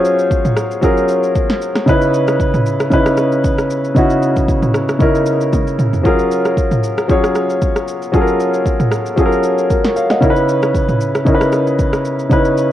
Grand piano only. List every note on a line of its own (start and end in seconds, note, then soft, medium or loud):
0.00 0.81 F#3 medium
0.00 0.82 C#4 medium
0.00 0.83 F4 medium
0.00 0.84 G#4 medium
0.00 0.85 A#4 medium
0.00 1.90 C5 medium
0.00 0.67 C#5 medium
0.81 1.66 F#3 medium
0.81 1.67 C#4 medium
0.81 1.67 F4 medium
0.81 1.68 G#4 medium
0.81 1.68 A#4 medium
1.86 2.71 C#3 medium
1.86 2.71 C#4 medium
1.86 2.71 D#4 medium
1.86 2.72 E4 medium
1.86 2.72 B4 loud
2.90 3.75 C#3 medium
2.90 3.75 C#4 medium
2.90 3.76 D#4 medium
2.90 3.76 E4 medium
2.90 3.77 B4 medium
3.94 4.79 C#3 medium
3.94 4.80 C#4 medium
3.94 4.80 D#4 medium
3.94 4.81 E4 medium
3.94 4.81 F#4 loud
4.99 5.84 C#3 medium
4.99 5.84 C#4 medium
4.99 5.84 D#4 medium
4.99 5.85 E4 medium
4.99 5.85 A#4 medium
6.03 6.88 F#3 medium
6.03 6.88 C#4 medium
6.03 6.89 F4 medium
6.03 6.89 G#4 medium
6.03 6.90 A#4 loud
7.08 7.92 F#3 medium
7.08 7.93 C#4 medium
7.08 7.93 F4 medium
7.08 7.94 G#4 medium
7.08 7.94 C#5 medium
8.12 8.97 F#3 medium
8.12 8.97 C#4 medium
8.12 8.98 F4 medium
8.12 8.98 G#4 medium
8.12 8.21 A4 medium
8.21 9.02 A#4 medium
9.16 10.01 F#3 medium
9.16 10.02 C#4 medium
9.16 9.70 F4 medium
9.16 9.71 G#4 medium
9.16 9.26 A4 medium
9.26 9.69 A#4 loud
9.70 9.84 F#4 medium
9.70 9.83 A#4 medium
9.84 9.96 A#4 medium
9.84 9.95 C#5 medium
9.96 10.10 C#5 medium
9.96 10.10 F5 medium
10.11 10.36 D#5 medium
10.11 10.35 F#5 medium
10.21 11.05 C#3 medium
10.21 11.06 C#4 medium
10.21 11.06 D#4 medium
10.21 11.07 E4 medium
10.21 10.30 A#4 medium
10.30 11.10 B4 loud
11.25 12.10 C#3 medium
11.25 12.10 C#4 medium
11.25 12.11 D#4 medium
11.25 12.11 E4 medium
11.25 11.34 A#4 medium
11.35 12.15 B4 medium
12.29 12.72 C#3 medium
12.29 12.72 C#4 medium
12.29 12.72 D#4 medium
12.29 12.72 E4 medium
12.29 12.72 B4 medium